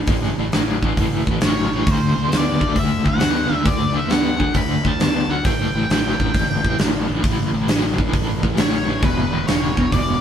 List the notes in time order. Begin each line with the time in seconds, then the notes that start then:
0.07 A1 A2 E3, kick, open hi-hat
0.24 snare
0.38 A1 A2 E3
0.52 A1 A2 F#3, snare, open hi-hat
0.83 A2 E3, kick
0.97 A1 A2 E3, kick, open hi-hat
1.27 A1 A2 E3, kick
1.41 A1 A2 F#3, snare, open hi-hat
1.45 C#5
1.73 A1 A2 E3
1.86 D2 D3 A3, kick, open hi-hat
1.91 C5
2.16 D2 D3 A3
2.29 D3 B3, open hi-hat
2.33 D2 D5, snare
2.60 D2 D3 A3, kick
2.74 D2 D3 A3, kick, open hi-hat
2.79 E5
3.04 D2 D3 A3, kick
3.08 F#5
3.19 D2 D3 B3, snare, open hi-hat
3.50 D2 D3 A3
3.54 E5
3.65 D2 D3 A3 D5, kick, open hi-hat
3.94 D2 D3 A3 E5
4.09 D2 D3 B3 F#5, snare, open hi-hat
4.40 D3 A3, kick
4.54 D2 D3 A3 B5, kick, open hi-hat
4.84 D2 D3 A3, kick
4.88 A5
5.00 D2 D3 B3 A5, snare, open hi-hat
5.28 D2 D3 A3 F#5
5.45 A1 A2 E3 G5, kick, open hi-hat
5.75 A1 A2 E3
5.90 A1 A2 F#3 G5, snare, open hi-hat
6.19 A1 A2 E3, kick
6.33 A1 A2 E3, kick, open hi-hat
6.63 A1 A2 E3, kick
6.79 A1 A2 F#3, snare, open hi-hat
7.08 A1 A2 E3
7.21 A1 A2 E3, kick, open hi-hat
7.52 A1 A2 E3
7.67 A1 A2 F#3, snare, open hi-hat
7.98 A2 E3, kick
8.13 A1 A2 E3, kick, open hi-hat
8.43 A1 A2 E3, kick
8.56 A1 A2 F#3 C#5, snare, open hi-hat
8.87 A1 A2 E3
9.02 E1 E2 B2 B4, kick, open hi-hat
9.32 E1 E2 B2 B4
9.47 E1 E2 C#3 C#5, snare, open hi-hat
9.77 E1 E2 B2, kick
9.91 E1 E2 B2 D5, kick, open hi-hat